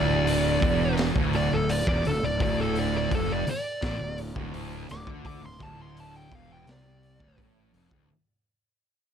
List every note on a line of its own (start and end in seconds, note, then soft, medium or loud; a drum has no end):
0.00 0.58 D1 loud
0.00 0.61 D2 loud
0.00 0.94 D5 medium
0.27 open hi-hat medium
0.61 1.12 E1 medium
0.61 1.14 E2 loud
0.61 kick loud
0.61 open hi-hat medium
0.97 snare loud
0.97 open hi-hat medium
1.16 1.49 D1 medium
1.16 1.50 D2 medium
1.16 kick loud
1.33 1.52 D5 loud
1.33 open hi-hat medium
1.52 1.85 D1 medium
1.52 1.80 D2 medium
1.52 1.70 A4 loud
1.69 1.87 D5 medium
1.69 open hi-hat medium
1.87 2.04 E1 medium
1.87 2.04 E2 loud
1.87 2.05 D5 medium
1.87 kick loud
2.05 2.22 D1 medium
2.05 2.22 D2 medium
2.05 2.23 A4 medium
2.05 open hi-hat medium
2.23 2.39 D1 medium
2.23 2.39 D2 medium
2.23 2.41 D5 loud
2.40 3.08 D1 loud
2.40 3.10 D2 loud
2.40 2.59 D5 loud
2.40 kick loud
2.40 open hi-hat medium
2.61 2.77 A4 medium
2.75 2.95 D5 medium
2.75 open hi-hat soft
2.97 3.13 D5 loud
3.11 3.45 F1 loud
3.11 3.46 F2 loud
3.11 3.30 A4 medium
3.11 kick loud
3.11 open hi-hat medium
3.32 3.48 D5 medium
3.47 4.18 D5 medium
3.47 muted distorted electric guitar stroke medium
3.47 muted fingered electric bass stroke soft
3.47 open hi-hat medium
3.82 3.99 A1 medium
3.82 3.99 A2 loud
3.82 kick loud
3.82 snare loud
3.82 open hi-hat medium
3.99 4.34 D1 medium
3.99 4.28 D2 medium
4.18 open hi-hat medium
4.36 4.86 D1 medium
4.36 4.87 D2 medium
4.36 kick loud
4.54 open hi-hat medium
4.89 5.06 D1 medium
4.89 5.07 D2 medium
4.89 5.08 D6 loud
4.89 snare soft
4.89 open hi-hat medium
5.06 5.40 D2 medium
5.06 5.41 D3 loud
5.06 kick loud
5.25 5.43 D6 medium
5.25 kick loud
5.25 open hi-hat medium
5.42 5.59 D1 medium
5.42 5.58 D2 medium
5.42 5.61 C6 medium
5.59 6.28 D1 medium
5.59 6.30 D2 loud
5.59 5.79 A5 medium
5.59 kick loud
5.59 open hi-hat medium
5.82 6.00 C6 medium
5.97 6.16 A5 loud
5.97 open hi-hat medium
6.16 6.35 G5 medium
6.31 6.65 E1 medium
6.31 6.66 E2 loud
6.31 kick loud
6.31 open hi-hat medium
6.35 6.51 F5 medium
6.53 6.68 G5 medium
6.67 7.17 C2 medium
6.67 7.19 C3 loud
6.67 snare loud
6.67 open hi-hat medium
6.71 7.38 D5 loud
7.03 open hi-hat medium
7.20 7.37 D1 medium
7.20 7.37 D2 loud
7.20 kick loud
7.37 7.71 A1 medium
7.37 7.72 A2 loud
7.37 kick loud
7.37 open hi-hat medium
7.73 7.90 F1 medium
7.73 7.90 F2 medium
7.73 open hi-hat medium
7.91 8.08 D1 medium
7.91 8.08 D2 medium
7.91 kick loud